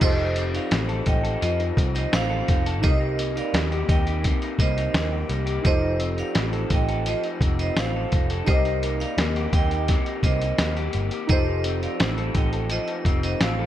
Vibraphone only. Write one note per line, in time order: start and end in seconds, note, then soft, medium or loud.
0.02 0.36 C5 medium
0.02 0.35 D#5 loud
0.55 0.71 D5 medium
0.55 0.71 F5 medium
1.07 1.41 D#5 medium
1.07 1.40 G5 medium
1.42 1.59 C5 medium
1.42 1.59 D#5 medium
1.95 2.12 C5 medium
1.95 2.12 D#5 medium
2.14 2.63 C5 medium
2.14 2.63 F5 medium
2.83 3.17 C5 medium
2.83 3.16 D#5 loud
3.37 3.54 D5 medium
3.37 3.53 F5 medium
3.90 4.23 D#5 medium
3.90 4.23 G5 medium
4.60 5.10 C5 medium
4.60 5.09 D#5 medium
5.66 5.99 C5 medium
5.66 5.99 D#5 loud
6.19 6.36 D5 medium
6.19 6.35 F5 medium
6.72 7.06 D#5 medium
6.72 7.05 G5 medium
7.07 7.24 C5 medium
7.07 7.23 D#5 medium
7.60 7.76 C5 medium
7.60 7.76 D#5 medium
7.77 8.27 C5 medium
7.77 8.26 F5 medium
8.47 8.81 C5 medium
8.47 8.80 D#5 loud
9.00 9.18 D5 medium
9.00 9.17 F5 medium
9.54 9.87 D#5 medium
9.54 9.87 G5 medium
10.24 10.74 C5 medium
10.24 10.74 D#5 medium
11.30 11.64 C5 medium
11.30 11.63 D#5 loud
11.83 12.00 D5 medium
11.83 11.99 F5 medium
12.36 12.70 D#5 medium
12.36 12.69 G5 medium
12.71 12.88 C5 medium
12.71 12.88 D#5 medium
13.24 13.41 C5 medium
13.24 13.41 D#5 medium
13.42 13.66 C5 medium
13.42 13.66 F5 medium